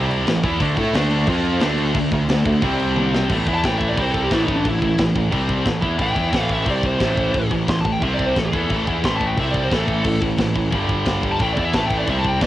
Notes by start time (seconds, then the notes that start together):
Already playing: C2 C3 G3 C4
0.11 crash
0.27 A1 A2 E3, snare, crash
0.43 E2 E3 B3 E4, kick, crash
0.60 D2 D3 A3 D4, kick, crash
0.77 A2 A3 E4 A4, kick, crash
0.93 D2 D3 A3 D4, snare, crash
1.11 crash
1.27 F2 F3 C4 F4, kick, crash
1.45 crash
1.60 D2 D3 A3 D4, snare, crash
1.78 crash
1.95 D2 D3 A3, kick, crash
2.11 D2 D3 A3, kick, crash
2.28 D2 D3 A3, snare, crash
2.45 D2 D3 A3, kick, crash
2.61 C2 C3 G3 C4, kick, crash
2.79 crash
2.97 high tom
3.15 snare
3.29 A1 A2 E3 A3, kick, crash
3.47 E2 E3 B3 E4, kick, crash
3.54 A5
3.64 A1 A2 E3 A3 G5, kick, snare, crash
3.78 E5, kick, crash
3.89 D5
3.97 C2 C3 G3 C4, kick, crash
4.02 C5
4.11 A4, kick, crash
4.23 G4
4.31 A1 A2 E3 A3 E4, kick, snare, crash
4.44 D#4
4.48 kick, crash
4.56 D4
4.65 A1 A2 E3 E4, kick, crash
4.82 A1 A2 E3, kick, crash
4.98 A1 A2 E3, kick, snare, crash
5.15 A1 A2 E3, kick, crash
5.32 C2 C3 G3 C4, kick, crash
5.49 kick, crash
5.66 A1 A2 E3, kick, snare, crash
5.82 E2 E3 B3 E4, kick, crash
5.98 A1 A2 E3 A3 G5, kick, crash
6.14 E2 E3 B3 E4, kick, crash
6.30 A1 A2 E3 A3, kick, crash
6.34 snare
6.49 E5, kick, crash
6.65 C2 C3 G3 C4, kick, crash
6.70 D5
6.83 C5, kick, crash
6.99 A1 A2 E3 A3, kick, snare, crash
7.17 kick, crash
7.33 A1 A2 E3, kick, crash
7.51 A1 A2 E3, kick, crash
7.67 A1 A2 E3 C6, kick, snare, crash
7.81 A5, crash
7.85 A1 A2 E3, kick
7.92 G5
8.02 C2 C3 G3 C4 E5, kick, crash
8.14 D5
8.19 kick, crash
8.26 C5
8.36 A1 A2 E3 A4, kick, snare, crash
8.46 A4
8.53 E2 E3 B3 E4, kick, crash
8.69 A1 A2 E3 A3, kick, crash
8.87 E2 E3 B3 E4, kick, crash
9.03 A1 A2 E3 A3 C6, kick, snare, crash
9.17 A5, crash
9.21 kick
9.27 G5
9.37 C2 C3 G3 C4 E5, kick, crash
9.51 D5, kick, crash
9.64 C5
9.71 A1 A2 E3 A3 A4, kick, snare, crash
9.86 A4, kick, crash
10.04 A1 A2 E3, kick, crash
10.21 A1 A2 E3, kick, crash
10.37 A1 A2 E3, kick, snare, crash
10.54 A1 A2 E3, kick, crash
10.70 G1 G2 D3 G3, kick, crash
10.89 kick, crash
11.05 kick, snare, crash
11.23 kick, crash
11.32 A5
11.39 A1 A2 E3 A3 G5, kick, crash
11.53 E3 D5, crash
11.57 E2 B3 E4, kick
11.64 E5
11.73 A1 A2 E3 A3 A5, kick, snare, crash
11.86 G5, crash
11.91 kick
11.98 D5
12.07 C2 C3 G3 C4 E5, kick, crash
12.19 A5
12.24 G5, kick, crash
12.41 A1 A2 E3 A3 D5, kick, snare, crash